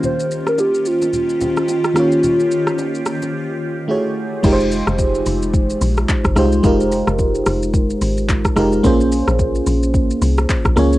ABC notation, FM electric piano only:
X:1
M:4/4
L:1/8
Q:"Swing 16ths" 1/4=109
K:Fm
V:1 name="FM electric piano"
[E,B,DFGc]6- [E,B,DFGc] [E,B,DFGd]- | [E,B,DFGd]6 [=A,_F_G_Ad]2 | [A,EFGBc]3 z4 [A,EFGc] | [A,EFGB]3 z4 [A,EFGB] |
[B,DFAc]3 z4 [B,DFAd] |]